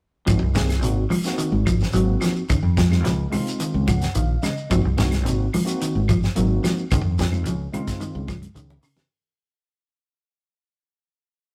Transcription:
0.26 fingered electric bass G#1, clean electric guitar F3, tine electric piano A#3 C4 D#4 F#4, kick, closed hi-hat, claves, shekere
0.42 fingered electric bass C2
0.55 clean electric guitar D#3, tine electric piano A#3 C4 D#4 G#4, kick, snare, closed hi-hat, high conga, shekere
0.69 snare, closed hi-hat, claves, shekere
0.82 fingered electric bass G#1, clean electric guitar C3, tine electric piano A#3 C4 D#4 F#4, closed hi-hat, shekere
1.10 clean electric guitar F3, open hi-hat, high conga, low conga, claves, shekere
1.24 tine electric piano A#3 C4 D#4 F#4, snare, closed hi-hat, shekere
1.38 clean electric guitar D#3, closed hi-hat, shekere
1.52 fingered electric bass G#1, high conga
1.66 clean electric guitar F3, kick, closed hi-hat, high conga, claves, shekere
1.80 snare, low conga, shekere
1.93 fingered electric bass G#1, clean electric guitar F#3, tine electric piano A#3 C4 D#4 F#4, closed hi-hat, shekere
2.21 clean electric guitar F3, snare, closed hi-hat, low conga, claves, shekere
2.36 shekere
2.49 fingered electric bass C#2, clean electric guitar D#3, kick, closed hi-hat, claves, shekere
2.63 fingered electric bass F2
2.77 clean electric guitar F3, kick, snare, closed hi-hat, high conga, shekere
2.90 tine electric piano G#3 C4 D#4 F4, snare, high conga, claves, shekere
3.05 fingered electric bass C#2, clean electric guitar F3, snare, closed hi-hat, shekere
3.30 clean electric guitar C3, tine electric piano G#3 C4 D#4 F4, open hi-hat, high conga, low conga, claves, shekere
3.47 closed hi-hat, shekere
3.60 clean electric guitar D#3, closed hi-hat, shekere
3.74 fingered electric bass C#2, high conga
3.87 clean electric guitar F3, tine electric piano F#5, kick, closed hi-hat, high conga, claves, shekere
4.01 snare, closed hi-hat, low conga, shekere
4.15 fingered electric bass A#1, clean electric guitar D#3, tine electric piano F5, closed hi-hat, shekere
4.42 clean electric guitar C#3, tine electric piano D#5, snare, closed hi-hat, high conga, low conga, claves, shekere
4.57 shekere
4.70 fingered electric bass G#1, clean electric guitar F3, tine electric piano A#3 C4 D#4 F#4, kick, closed hi-hat, claves, shekere
4.85 fingered electric bass C2
4.97 clean electric guitar D#3, tine electric piano A#3 C4 D#4 F#4, kick, snare, closed hi-hat, high conga, shekere
5.11 snare, closed hi-hat, high conga, claves, shekere
5.24 fingered electric bass G#1, clean electric guitar C3, tine electric piano A#3 C4 D#4 F#4, closed hi-hat, shekere
5.53 clean electric guitar F3, open hi-hat, high conga, low conga, claves, shekere
5.64 tine electric piano A#3 C4 D#4 F#4, closed hi-hat, shekere
5.82 clean electric guitar D#3, closed hi-hat, shekere
5.95 fingered electric bass G#1, high conga
6.08 clean electric guitar F3, kick, closed hi-hat, high conga, claves, shekere
6.23 snare, shekere
6.35 fingered electric bass G#1, clean electric guitar F#3, tine electric piano A#3 C4 D#4 F#4, closed hi-hat, shekere
6.64 clean electric guitar F3, snare, closed hi-hat, high conga, low conga, claves, shekere
6.78 shekere
6.91 fingered electric bass C#2, clean electric guitar D#3, kick, closed hi-hat, claves, shekere
7.05 fingered electric bass F2
7.18 clean electric guitar F3, kick, snare, closed hi-hat, high conga, shekere
7.31 tine electric piano G#3 C4 D#4 F4, high conga, claves, shekere
7.46 fingered electric bass C#2, clean electric guitar F3, closed hi-hat, shekere
7.73 clean electric guitar C#3, tine electric piano G#3 C4 D#4 F4, closed hi-hat, high conga, low conga, claves, shekere
7.88 kick, snare, closed hi-hat, shekere
8.01 clean electric guitar D#3, closed hi-hat, high conga, shekere
8.15 fingered electric bass C#2, high conga
8.28 clean electric guitar F3, kick, snare, closed hi-hat, high conga, claves, shekere
8.42 closed hi-hat, high conga, shekere
8.55 fingered electric bass C#2, clean electric guitar D#3, closed hi-hat, high conga, shekere
8.70 low conga
8.83 clean electric guitar C#3, open hi-hat, claves, shekere
8.97 snare, low conga, shekere

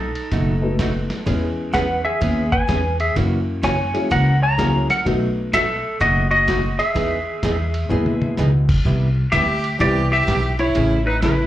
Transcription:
Already playing: upright bass B1, electric slide guitar D#4 A4
0.15 ride
0.32 upright bass F#1, hollow-body jazz guitar B2 F#3 A3 D#4 F#4, kick, ride
0.61 upright piano A3 B3 D#4 F#4 A4
0.79 hollow-body jazz guitar B2 F#3 A3 D#4 F#4, kick, snare, hi-hat pedal, ride
1.10 snare, ride
1.26 upright bass E2, hollow-body jazz guitar E3 B3 C#4 G#4, upright piano G#3 B3 C#4 E4 G#4, kick, ride
1.73 hollow-body jazz guitar E3 B3 C#4 G#4, electric slide guitar B4 F#5, kick, snare, hi-hat pedal, ride
2.05 electric slide guitar G#4 E5
2.21 upright bass D#2, hollow-body jazz guitar E3 B3 C#4 G#4, kick, ride
2.52 electric slide guitar B4 G#5, kick
2.68 upright bass E2, hollow-body jazz guitar E3 B3 C#4 G#4, kick, snare, hi-hat pedal, ride
3.00 electric slide guitar G#4 E5, ride
3.16 upright bass F#2, hollow-body jazz guitar C#3 E3 A#3 C#4 F#4, upright piano F#3 A#3 C#4 E4 F#4, kick, ride
3.63 hollow-body jazz guitar C#3 E3 A#3 C#4 F#4, electric slide guitar C#5 G#5, kick, snare, hi-hat pedal, ride
3.94 upright piano F#3 A#3 C#4 E4 G#4, ride
4.10 upright bass C#2, hollow-body jazz guitar C#3 E3 A#3 C#4 F#4, electric slide guitar A#4 F#5, kick, ride
4.42 electric slide guitar C#5 A#5
4.58 hollow-body jazz guitar C#3 E3 A#3 C#4 F#4, upright piano F#3 A#3 C#4 E4 G#4, kick, snare, hi-hat pedal, ride
4.90 electric slide guitar A#4 F#5, snare, ride
5.05 upright bass B1, hollow-body jazz guitar B2 F#3 A3 D#4 F#4, upright piano F#3 A3 B3 D#4 F#4, kick, ride
5.53 hollow-body jazz guitar B2 F#3 A3 D#4 F#4, electric slide guitar A4 E5, kick, snare, hi-hat pedal, ride
6.00 upright bass F#1, hollow-body jazz guitar B2 F#3 A3 D#4 F#4, electric slide guitar F#4 D#5, kick, ride
6.31 electric slide guitar F#4 D#5
6.47 hollow-body jazz guitar B2 F#3 A3 D#4 F#4, kick, snare, hi-hat pedal, ride
6.79 electric slide guitar G#4 E5, ride
6.95 upright bass E2, hollow-body jazz guitar E3 B3 D#4 G#4, kick, ride
7.43 upright bass E2, hollow-body jazz guitar E3 B3 D#4 G#4, kick, snare, hi-hat pedal, ride
7.74 ride
7.89 upright bass D#2, upright piano B2 G#3 B3 E4, hollow-body jazz guitar E3 B3 D#4 G#4, mid tom
8.06 high tom
8.22 high tom
8.37 upright bass C#2, hollow-body jazz guitar E3 B3 D#4 G#4, snare, hi-hat pedal
8.69 kick, crash
8.85 upright bass C2, hollow-body jazz guitar C3 G3 B3 E4 G4, kick
9.32 upright bass D2, hollow-body jazz guitar C3 G3 B3 E4 G4, electric slide guitar G4 E5, fiddle G4, kick, snare, hi-hat pedal, ride
9.64 ride
9.79 upright bass C2, hollow-body jazz guitar C3 G3 B3 E4 G4, upright piano E3 G3 B3 C4 E4, electric slide guitar G4 D5, fiddle G4, kick, ride
10.12 electric slide guitar G4 E5, fiddle G4
10.27 upright bass B1, hollow-body jazz guitar C3 G3 B3 E4 G4, kick, snare, hi-hat pedal, ride
10.59 electric slide guitar E4 C#5, fiddle E4, ride
10.74 upright bass A1, hollow-body jazz guitar C#3 E3 A3 C#4 G#4, kick, ride
11.06 electric slide guitar D#4 B4, fiddle D#4
11.22 hollow-body jazz guitar C#3 E3 A3 C#4 G#4, electric slide guitar E4 B4, fiddle E4, kick, snare, hi-hat pedal, ride

